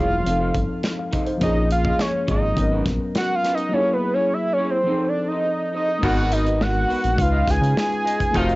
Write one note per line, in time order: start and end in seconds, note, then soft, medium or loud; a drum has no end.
0.00 0.23 E1 medium
0.00 0.22 F#3 medium
0.00 0.23 A#3 medium
0.00 0.15 E4 medium
0.00 0.25 E4 medium
0.00 0.26 G#4 medium
0.00 0.10 C#5 medium
0.00 0.56 F5 loud
0.10 muted clean electric guitar stroke soft
0.23 0.52 F1 loud
0.23 1.36 F3 medium
0.23 1.39 C4 medium
0.23 muted clean electric guitar stroke soft
0.23 closed hi-hat loud
0.29 1.41 D#4 medium
0.29 1.42 A4 medium
0.40 0.54 D#4 medium
0.40 0.54 A4 medium
0.40 0.54 C5 medium
0.55 0.68 G1 medium
0.55 muted clean electric guitar stroke soft
0.55 kick medium
0.55 closed hi-hat medium
0.69 muted clean electric guitar stroke soft
0.83 snare medium
0.83 closed hi-hat medium
0.98 1.13 F5 medium
0.98 muted clean electric guitar stroke soft
1.11 1.31 D#4 medium
1.11 1.26 A4 medium
1.11 1.25 C5 medium
1.11 1.27 D#5 medium
1.11 kick medium
1.11 closed hi-hat medium
1.26 1.55 C5 medium
1.26 muted clean electric guitar stroke soft
1.26 closed hi-hat soft
1.38 1.92 A#1 loud
1.38 2.53 F3 medium
1.38 2.54 A#3 medium
1.38 1.60 F4 medium
1.38 kick medium
1.38 closed hi-hat medium
1.42 2.55 C#4 medium
1.42 1.60 G#4 medium
1.42 2.57 G#4 medium
1.42 1.61 C#5 medium
1.42 1.69 D#5 loud
1.70 2.02 F5 loud
1.70 muted clean electric guitar stroke soft
1.70 closed hi-hat medium
1.85 2.00 F4 soft
1.85 2.00 G#4 medium
1.85 2.00 D#5 medium
1.85 kick medium
1.99 2.29 C#5 medium
1.99 snare loud
1.99 closed hi-hat medium
2.13 muted clean electric guitar stroke soft
2.27 2.54 G#1 medium
2.27 2.46 F4 medium
2.27 2.42 G#4 medium
2.27 2.42 D#5 medium
2.27 kick medium
2.27 closed hi-hat medium
2.31 2.84 D#5 medium
2.42 muted clean electric guitar stroke soft
2.54 2.82 G#1 loud
2.54 3.68 F#3 medium
2.54 3.70 B3 medium
2.54 muted clean electric guitar stroke soft
2.54 kick medium
2.54 closed hi-hat loud
2.59 3.71 C#4 medium
2.59 3.73 A#4 medium
2.72 2.85 C#4 medium
2.72 2.85 F#4 medium
2.72 2.86 B4 medium
2.86 2.99 A#1 medium
2.86 muted clean electric guitar stroke soft
2.86 kick medium
2.86 snare soft
2.86 closed hi-hat medium
3.00 muted clean electric guitar stroke soft
3.15 3.36 F#5 loud
3.15 muted clean electric guitar stroke soft
3.15 snare loud
3.15 closed hi-hat medium
3.35 3.56 F5 loud
3.43 3.58 C#4 medium
3.43 3.58 F#4 medium
3.43 3.57 B4 medium
3.43 snare soft
3.43 closed hi-hat medium
3.54 3.75 D#5 loud
3.54 muted clean electric guitar stroke soft
3.54 closed hi-hat soft
3.69 4.84 F#3 medium
3.69 4.85 A#3 medium
3.69 3.93 E4 medium
3.73 4.87 E4 medium
3.73 3.93 G#4 medium
3.73 4.88 G#4 medium
3.73 3.93 A#4 loud
3.73 3.95 C#5 loud
3.93 4.15 B4 medium
4.01 muted clean electric guitar stroke soft
4.14 4.31 E4 medium
4.14 4.30 G#4 soft
4.14 4.35 C#5 medium
4.14 4.30 C#5 medium
4.34 4.54 E5 medium
4.45 muted clean electric guitar stroke soft
4.53 4.72 C#5 loud
4.58 4.77 E4 medium
4.58 4.74 G#4 medium
4.58 4.73 C#5 medium
4.70 5.10 C5 medium
4.70 muted clean electric guitar stroke soft
4.84 5.99 F3 medium
4.84 6.01 C4 medium
4.84 5.06 D#4 medium
4.84 5.06 A4 medium
4.88 6.02 D#4 medium
4.88 4.96 G#4 medium
4.88 5.07 C5 loud
4.98 6.06 A4 medium
5.09 5.29 D5 medium
5.17 muted clean electric guitar stroke soft
5.28 5.44 A4 medium
5.28 5.45 C5 medium
5.28 5.75 D#5 medium
5.32 5.44 D#4 soft
5.45 muted clean electric guitar stroke soft
5.73 5.89 D#4 soft
5.73 5.88 A4 medium
5.73 5.86 C5 soft
5.73 6.02 D#5 medium
5.88 muted clean electric guitar stroke soft
5.99 6.86 G#1 loud
5.99 6.44 B2 medium
5.99 6.44 D#3 medium
5.99 7.14 G#3 medium
5.99 7.15 B3 medium
5.99 6.21 B3 medium
5.99 6.44 D#4 loud
5.99 7.16 D#4 medium
5.99 6.22 F#4 medium
5.99 crash medium
6.03 6.44 A#3 medium
6.03 7.17 F#4 medium
6.03 6.22 A#4 medium
6.03 7.18 A#4 medium
6.03 6.34 F#5 loud
6.03 kick medium
6.31 6.63 D#5 medium
6.31 muted clean electric guitar stroke soft
6.31 closed hi-hat medium
6.45 6.61 B3 soft
6.45 6.61 F#4 soft
6.45 6.60 B4 medium
6.45 closed hi-hat medium
6.61 7.23 F#5 loud
6.61 snare loud
6.74 muted clean electric guitar stroke soft
6.88 6.96 A#1 soft
6.88 7.08 B3 medium
6.88 7.03 F#4 medium
6.88 7.03 B4 medium
6.88 open hi-hat soft
7.03 7.17 A#1 medium
7.03 muted clean electric guitar stroke soft
7.03 closed hi-hat medium
7.15 7.44 C#2 loud
7.15 8.30 G#3 medium
7.15 8.31 C#4 medium
7.15 muted clean electric guitar stroke soft
7.15 kick loud
7.19 8.32 D#4 medium
7.19 8.33 F4 medium
7.19 8.34 B4 medium
7.19 7.52 F5 loud
7.19 closed hi-hat loud
7.32 7.46 F4 medium
7.32 7.47 B4 medium
7.32 7.47 D#5 medium
7.47 7.60 C#2 medium
7.47 7.78 G#5 loud
7.47 muted clean electric guitar stroke soft
7.47 kick medium
7.47 snare soft
7.47 closed hi-hat medium
7.61 7.74 C#3 loud
7.61 muted clean electric guitar stroke soft
7.61 closed hi-hat medium
7.76 8.38 G#5 loud
7.76 muted clean electric guitar stroke soft
7.76 snare loud
7.92 closed hi-hat soft
8.04 8.19 F4 medium
8.04 8.19 B4 medium
8.04 8.18 D#5 medium
8.04 closed hi-hat medium
8.19 muted clean electric guitar stroke soft
8.19 kick medium
8.19 closed hi-hat medium
8.31 8.55 F1 loud
8.31 8.55 C3 medium
8.31 8.55 D#3 medium
8.31 8.55 A3 medium
8.31 8.55 D#4 medium
8.31 8.55 D#4 loud
8.31 8.52 F#4 medium
8.31 8.53 A4 medium
8.31 kick loud
8.31 closed hi-hat medium
8.35 8.55 F4 medium
8.35 8.55 F#4 medium
8.35 8.55 C5 medium
8.35 8.53 D#5 medium
8.35 8.55 F5 loud
8.49 closed hi-hat soft